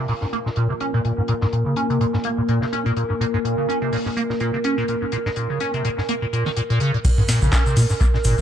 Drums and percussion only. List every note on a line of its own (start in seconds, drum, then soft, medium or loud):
0.08 snare soft
0.08 open hi-hat medium
0.22 snare soft
0.33 closed hi-hat medium
0.47 snare medium
0.56 closed hi-hat medium
0.80 closed hi-hat medium
1.05 closed hi-hat medium
1.28 closed hi-hat medium
1.41 snare medium
1.53 closed hi-hat medium
1.76 closed hi-hat medium
1.90 closed hi-hat soft
2.01 closed hi-hat medium
2.14 snare soft
2.24 closed hi-hat medium
2.49 closed hi-hat medium
2.62 snare soft
2.73 closed hi-hat medium
2.86 closed hi-hat soft
2.97 closed hi-hat medium
3.21 closed hi-hat medium
3.45 closed hi-hat medium
3.70 closed hi-hat medium
3.93 snare soft
3.93 open hi-hat medium
4.06 snare soft
4.17 closed hi-hat medium
4.30 snare soft
4.40 closed hi-hat medium
4.64 closed hi-hat medium
4.88 closed hi-hat medium
5.12 closed hi-hat medium
5.26 snare medium
5.36 closed hi-hat medium
5.60 closed hi-hat medium
5.74 closed hi-hat soft
5.85 closed hi-hat medium
5.98 snare soft
6.09 closed hi-hat medium
6.33 closed hi-hat medium
6.46 snare soft
6.56 closed hi-hat medium
6.70 closed hi-hat soft
6.80 closed hi-hat medium
7.05 kick loud
7.05 closed hi-hat loud
7.05 crash loud
7.05 shaker medium
7.18 mid tom loud
7.28 snare medium
7.28 closed hi-hat medium
7.28 open hi-hat loud
7.28 shaker medium
7.42 shaker soft
7.52 kick loud
7.52 snare loud
7.52 clap loud
7.52 closed hi-hat medium
7.52 shaker medium
7.66 shaker soft
7.76 snare soft
7.76 open hi-hat medium
7.76 open hi-hat loud
7.76 shaker loud
7.89 snare soft
7.89 shaker soft
8.01 kick loud
8.01 closed hi-hat loud
8.01 shaker soft
8.15 snare medium
8.24 closed hi-hat medium
8.24 open hi-hat loud
8.24 shaker medium
8.38 shaker soft